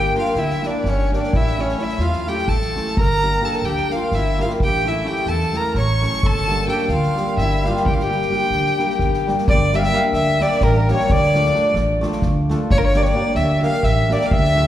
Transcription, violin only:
Already playing: G5
0.19 F5
0.39 E5
0.66 D5
0.88 C#5
1.16 D5
1.36 E5
1.61 C#5
1.82 E5
2.01 F5
2.28 G5
2.49 A5
3.00 A#5
3.45 A5
3.65 G5
3.92 F5
4.15 E5
4.42 F5
4.63 G5
4.88 E5
5.07 G5
5.29 A5
5.57 A#5
5.79 C#6
6.26 A5
6.69 G5
6.83 G5
6.89 F5
7.38 E5
7.66 F5
7.87 G5
7.93 F5
8.02 G5
9.48 D5
9.75 E5 F5
9.84 E5
9.94 F5
10.14 E5
10.42 D5
10.64 A#4
10.92 C#5
11.11 D5
12.71 C#5
12.78 A#4
12.85 C#5
12.97 D5
13.03 C#5
13.08 D5
13.36 E5
13.63 F5
13.84 E5
14.13 D5
14.25 F5
14.32 E5

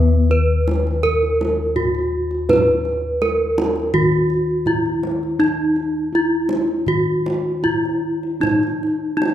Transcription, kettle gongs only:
Already playing: D#2 D#3 B4
0.30 E4
1.76 E4
2.49 B4
3.23 E4
3.94 D#3
4.67 E4
5.39 D#4
6.13 E4
6.87 D#3
7.63 E4
8.41 D#4
9.20 E4

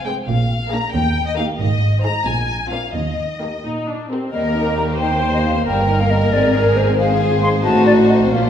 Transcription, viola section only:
0.05 G#3 C4
0.72 A#3 D4
1.36 A#3 D#4
2.03 G#3 D#4
2.71 C4 D4
3.41 A#3 D#4
3.65 D#4
3.87 D4
4.10 C4
4.33 A#4
5.00 C5
5.67 A#4
6.99 G#4
7.65 F#4
8.32 F4

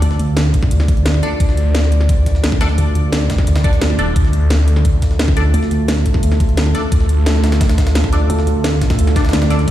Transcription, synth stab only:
1.23 D4 A4 D5
2.61 D4 A4 D5
3.64 D4 A4 D5
3.99 D4 A4 D5
5.37 D4 A4 D5
6.75 D4 A4 D5
8.13 D4 A4 D5
9.16 D4 A4 D5
9.50 D4 A4 D5

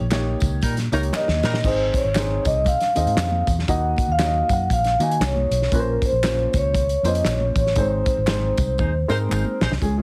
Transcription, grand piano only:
0.12 A#3 D#4 G4 C#5
0.92 A#3 D#4 G4 C#5
1.64 C4 D#4 G#4 D#5
2.15 C4 D#4 G#4 C5
2.96 C4 D#4 G#4 D#5
3.68 A#3 D#4 F#4 D#5
4.18 A#3 D#4 F#4 C#5
4.26 D#5
5.00 A#3 D#4 F#4 D#5
5.72 A#3 C#4 F4 B4
5.79 C5
6.24 A#3 C#4 F4 C5
7.04 A#3 C4 F4 C5
7.11 C#4
7.77 G#3 C4 D#4 C5
8.27 G#3 C4 D#4 C5
9.08 G#3 C4 D#4 A#4
9.81 F3 G#3 C#4 G#4
9.97 F3 G#3 C#4 G#4

